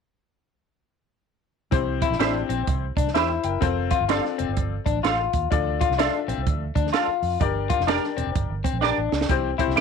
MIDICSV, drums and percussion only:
0, 0, Header, 1, 2, 480
1, 0, Start_track
1, 0, Tempo, 473934
1, 1739, Time_signature, 4, 2, 24, 8
1, 9930, End_track
2, 0, Start_track
2, 0, Title_t, "Drums"
2, 1743, Note_on_c, 9, 42, 72
2, 1744, Note_on_c, 9, 36, 108
2, 1845, Note_off_c, 9, 36, 0
2, 1845, Note_off_c, 9, 42, 0
2, 2043, Note_on_c, 9, 42, 80
2, 2044, Note_on_c, 9, 36, 93
2, 2144, Note_off_c, 9, 42, 0
2, 2145, Note_off_c, 9, 36, 0
2, 2151, Note_on_c, 9, 38, 33
2, 2230, Note_on_c, 9, 42, 81
2, 2241, Note_off_c, 9, 38, 0
2, 2241, Note_on_c, 9, 38, 103
2, 2332, Note_off_c, 9, 42, 0
2, 2342, Note_off_c, 9, 38, 0
2, 2530, Note_on_c, 9, 42, 68
2, 2632, Note_off_c, 9, 42, 0
2, 2708, Note_on_c, 9, 36, 86
2, 2708, Note_on_c, 9, 42, 76
2, 2809, Note_off_c, 9, 42, 0
2, 2810, Note_off_c, 9, 36, 0
2, 3005, Note_on_c, 9, 36, 88
2, 3019, Note_on_c, 9, 42, 64
2, 3106, Note_off_c, 9, 36, 0
2, 3115, Note_on_c, 9, 38, 33
2, 3121, Note_off_c, 9, 42, 0
2, 3193, Note_on_c, 9, 42, 79
2, 3199, Note_off_c, 9, 38, 0
2, 3199, Note_on_c, 9, 38, 103
2, 3294, Note_off_c, 9, 42, 0
2, 3300, Note_off_c, 9, 38, 0
2, 3480, Note_on_c, 9, 42, 77
2, 3581, Note_off_c, 9, 42, 0
2, 3665, Note_on_c, 9, 36, 106
2, 3666, Note_on_c, 9, 42, 79
2, 3766, Note_off_c, 9, 36, 0
2, 3768, Note_off_c, 9, 42, 0
2, 3957, Note_on_c, 9, 42, 79
2, 3963, Note_on_c, 9, 36, 89
2, 4058, Note_off_c, 9, 42, 0
2, 4064, Note_off_c, 9, 36, 0
2, 4141, Note_on_c, 9, 42, 84
2, 4152, Note_on_c, 9, 38, 104
2, 4243, Note_off_c, 9, 42, 0
2, 4253, Note_off_c, 9, 38, 0
2, 4304, Note_on_c, 9, 38, 30
2, 4406, Note_off_c, 9, 38, 0
2, 4444, Note_on_c, 9, 42, 66
2, 4546, Note_off_c, 9, 42, 0
2, 4626, Note_on_c, 9, 42, 74
2, 4630, Note_on_c, 9, 36, 88
2, 4727, Note_off_c, 9, 42, 0
2, 4731, Note_off_c, 9, 36, 0
2, 4925, Note_on_c, 9, 36, 92
2, 4932, Note_on_c, 9, 42, 57
2, 5026, Note_off_c, 9, 36, 0
2, 5033, Note_off_c, 9, 42, 0
2, 5110, Note_on_c, 9, 42, 82
2, 5116, Note_on_c, 9, 38, 100
2, 5211, Note_off_c, 9, 42, 0
2, 5217, Note_off_c, 9, 38, 0
2, 5401, Note_on_c, 9, 42, 79
2, 5405, Note_on_c, 9, 36, 82
2, 5503, Note_off_c, 9, 42, 0
2, 5506, Note_off_c, 9, 36, 0
2, 5588, Note_on_c, 9, 36, 111
2, 5589, Note_on_c, 9, 42, 77
2, 5689, Note_off_c, 9, 36, 0
2, 5691, Note_off_c, 9, 42, 0
2, 5886, Note_on_c, 9, 42, 79
2, 5887, Note_on_c, 9, 36, 91
2, 5987, Note_off_c, 9, 42, 0
2, 5988, Note_off_c, 9, 36, 0
2, 5990, Note_on_c, 9, 38, 34
2, 6069, Note_on_c, 9, 42, 88
2, 6079, Note_off_c, 9, 38, 0
2, 6079, Note_on_c, 9, 38, 104
2, 6170, Note_off_c, 9, 42, 0
2, 6180, Note_off_c, 9, 38, 0
2, 6371, Note_on_c, 9, 42, 62
2, 6473, Note_off_c, 9, 42, 0
2, 6549, Note_on_c, 9, 42, 79
2, 6550, Note_on_c, 9, 36, 96
2, 6650, Note_off_c, 9, 42, 0
2, 6652, Note_off_c, 9, 36, 0
2, 6843, Note_on_c, 9, 36, 85
2, 6854, Note_on_c, 9, 42, 59
2, 6944, Note_off_c, 9, 36, 0
2, 6953, Note_on_c, 9, 38, 33
2, 6955, Note_off_c, 9, 42, 0
2, 7024, Note_on_c, 9, 42, 83
2, 7030, Note_off_c, 9, 38, 0
2, 7030, Note_on_c, 9, 38, 97
2, 7125, Note_off_c, 9, 42, 0
2, 7131, Note_off_c, 9, 38, 0
2, 7319, Note_on_c, 9, 46, 52
2, 7420, Note_off_c, 9, 46, 0
2, 7503, Note_on_c, 9, 36, 109
2, 7503, Note_on_c, 9, 42, 77
2, 7604, Note_off_c, 9, 36, 0
2, 7604, Note_off_c, 9, 42, 0
2, 7797, Note_on_c, 9, 42, 74
2, 7801, Note_on_c, 9, 36, 88
2, 7899, Note_off_c, 9, 42, 0
2, 7902, Note_off_c, 9, 36, 0
2, 7905, Note_on_c, 9, 38, 35
2, 7983, Note_on_c, 9, 42, 83
2, 7994, Note_off_c, 9, 38, 0
2, 7994, Note_on_c, 9, 38, 107
2, 8085, Note_off_c, 9, 42, 0
2, 8095, Note_off_c, 9, 38, 0
2, 8141, Note_on_c, 9, 38, 29
2, 8242, Note_off_c, 9, 38, 0
2, 8282, Note_on_c, 9, 42, 66
2, 8384, Note_off_c, 9, 42, 0
2, 8462, Note_on_c, 9, 36, 91
2, 8462, Note_on_c, 9, 42, 76
2, 8563, Note_off_c, 9, 42, 0
2, 8564, Note_off_c, 9, 36, 0
2, 8756, Note_on_c, 9, 36, 91
2, 8767, Note_on_c, 9, 42, 59
2, 8857, Note_off_c, 9, 36, 0
2, 8868, Note_off_c, 9, 42, 0
2, 8947, Note_on_c, 9, 38, 57
2, 9048, Note_off_c, 9, 38, 0
2, 9241, Note_on_c, 9, 38, 82
2, 9330, Note_off_c, 9, 38, 0
2, 9330, Note_on_c, 9, 38, 79
2, 9414, Note_on_c, 9, 36, 104
2, 9414, Note_on_c, 9, 42, 73
2, 9431, Note_off_c, 9, 38, 0
2, 9515, Note_off_c, 9, 42, 0
2, 9516, Note_off_c, 9, 36, 0
2, 9714, Note_on_c, 9, 36, 84
2, 9718, Note_on_c, 9, 42, 74
2, 9816, Note_off_c, 9, 36, 0
2, 9819, Note_off_c, 9, 42, 0
2, 9826, Note_on_c, 9, 38, 32
2, 9896, Note_on_c, 9, 42, 80
2, 9927, Note_off_c, 9, 38, 0
2, 9930, Note_off_c, 9, 42, 0
2, 9930, End_track
0, 0, End_of_file